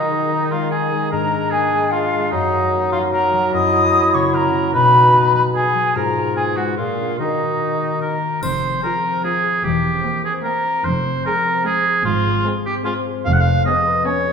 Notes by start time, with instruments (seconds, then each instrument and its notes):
Already playing: bassoon D#3, harp D#3 D#4, oboe D#4, clarinet D#4, flute D#5
0.10 harp G#4
0.31 harp D#4
0.51 harp G#3, oboe F4, flute F5
0.71 harp D#4, oboe G#4, flute G#5
0.91 harp G#3
1.11 harp G#2, bassoon G#3, clarinet D4, oboe A#4, flute A#5
1.32 harp A#4
1.51 harp A#3, oboe G#4, flute G#5
1.71 harp G#3
1.91 harp A#3, oboe F4, flute F5
2.12 harp G#3
2.31 harp F#2, bassoon F#3, oboe D#4, clarinet D#4, flute D#5
2.52 harp A#4
2.73 harp A#3
2.91 harp F#3, oboe F4, flute F5
3.12 harp A#3, oboe A#4, flute A#5
3.33 harp F#3
3.53 harp F#2, clarinet E4, oboe D#5, flute D#6
3.73 harp F#4
3.93 harp A#3
4.14 harp C#3, oboe C#5, flute C#6
4.33 harp A#3, oboe A#4, flute A#5
4.53 harp C#3
4.73 harp B2, bassoon B2, clarinet D#4, oboe B4, flute B5
4.94 harp F#4
5.14 harp B3
5.34 harp F#3, oboe B4, flute B5
5.54 harp B3, oboe G#4, flute G#5
5.75 harp F#3
5.95 harp G#2, bassoon G#2, clarinet F4, oboe A#4, flute A#5
6.36 harp B3, oboe G#4, flute G#5
6.56 harp G#3, oboe F#4, flute F#5
6.77 harp A#2, bassoon A#2, oboe F4, clarinet G#4, flute F5
6.98 harp D4 G#4
7.18 harp D#3, bassoon D#3, oboe D#4, clarinet F#4, flute D#5
7.39 harp A#4
7.60 harp D#4
7.80 harp A#3
8.01 harp D#4, oboe A#4
8.22 harp A#3
8.42 double bass section F1, cello section F2, harp F3, oboe C5, triangle
8.62 harp C4
8.82 viola section F3, violin section C4 G#5, harp G#4, oboe A#4
9.03 harp C5
9.23 viola section F3, violin section C4 G#5, oboe G#4, harp F5
9.44 harp G#4
9.64 double bass section E1, cello section E2, harp E3, oboe G4
9.84 harp C4
10.04 viola section A#3, violin section C4 G5, harp A#4
10.24 oboe G#4, harp C5
10.43 viola section A#3, violin section C4 G5, oboe A#4, harp G5
10.84 double bass section F1, cello section F2, harp F3, oboe C5
11.05 harp C4
11.25 viola section G#3, violin section C4 G#5, harp G#4, oboe A#4
11.65 viola section G#3, violin section C4 G#5, oboe G#4, harp G#5
11.85 harp G#4
12.05 double bass section G#1, harp G#2, cello section G#2, oboe F4
12.26 harp G#3
12.45 viola section G#3, violin section C4 G#5, harp G#4
12.66 harp C4, oboe G4
12.85 viola section G#3, violin section C4 G#5, oboe F4, harp C5
13.06 harp G#4
13.25 double bass section F1, cello section F2, harp F2, oboe F5
13.33 oboe F#5
13.40 oboe F5
13.46 harp B3
13.66 viola section B3, violin section C#4 G#5, harp G#4, oboe D#5
13.86 harp B4
14.05 viola section B3, violin section C#4 G#5, oboe C#5, harp C#5
14.26 harp G#4